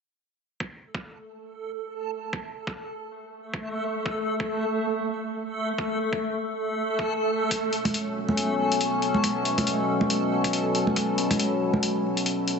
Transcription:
0.60 12.60 A3 medium
0.60 12.60 A4 medium
0.60 kick loud
0.95 kick loud
2.33 kick loud
2.67 kick loud
3.54 kick loud
4.06 kick loud
4.40 kick loud
5.78 kick loud
6.13 kick loud
6.99 kick medium
7.51 12.60 B2 medium
7.51 12.60 F#3 medium
7.51 12.60 C#4 medium
7.51 kick loud
7.51 closed hi-hat medium
7.73 closed hi-hat soft
7.85 kick loud
7.85 closed hi-hat medium
7.85 high conga medium
7.94 closed hi-hat medium
8.29 high conga medium
8.37 closed hi-hat medium
8.72 closed hi-hat soft
8.81 closed hi-hat medium
9.02 closed hi-hat soft
9.14 high conga medium
9.24 kick loud
9.24 closed hi-hat medium
9.45 closed hi-hat medium
9.58 kick loud
9.58 closed hi-hat medium
9.58 high conga medium
9.67 closed hi-hat medium
10.01 high conga medium
10.10 closed hi-hat medium
10.44 kick loud
10.44 closed hi-hat medium
10.53 closed hi-hat medium
10.75 closed hi-hat soft
10.87 high conga medium
10.96 kick loud
10.96 closed hi-hat medium
11.18 closed hi-hat medium
11.31 kick loud
11.31 closed hi-hat medium
11.31 high conga medium
11.39 closed hi-hat medium
11.74 high conga medium
11.83 closed hi-hat medium
12.17 closed hi-hat medium
12.26 closed hi-hat medium
12.48 closed hi-hat medium

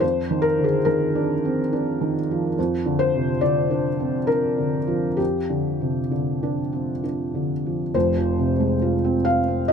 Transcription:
0.00 2.53 F2 soft
0.00 0.19 F3 soft
0.00 0.44 C5 medium
0.31 0.76 D#3 soft
0.42 0.65 A#4 medium
0.59 0.87 D3 soft
0.64 0.87 G#4 medium
0.85 1.32 D#3 soft
0.85 2.13 A#4 medium
1.15 1.61 D4 soft
1.45 1.73 C4 soft
1.73 2.18 D4 soft
2.01 2.46 D#3 soft
2.31 2.58 F3 soft
2.59 5.16 F2 medium
2.86 3.31 D3 soft
2.99 3.42 C5 medium
3.15 3.43 C3 soft
3.41 3.88 D3 soft
3.41 4.28 D5 medium
3.71 4.17 D4 soft
4.00 4.29 C4 soft
4.27 4.76 D4 soft
4.27 5.18 A#4 medium
4.58 5.07 D3 soft
4.87 5.37 F3 soft
5.17 7.90 F2 soft
5.17 7.02 G4 medium
5.50 5.99 D3 soft
5.81 6.11 C3 soft
6.11 6.60 D3 soft
6.43 6.91 D4 soft
6.73 7.03 C4 soft
7.04 7.52 D4 soft
7.34 7.83 D3 soft
7.66 7.95 F3 soft
7.94 9.73 F1 soft
7.94 9.73 F2 soft
7.94 9.26 C5 medium
8.18 8.52 F3 soft
8.39 8.74 C3 soft
8.60 8.95 G#3 soft
8.82 9.17 F4 soft
9.04 9.39 C4 medium
9.25 9.60 F4 soft
9.25 9.68 F5 medium
9.48 9.73 C4 soft
9.68 9.73 F4 soft
9.68 9.73 D#5 medium

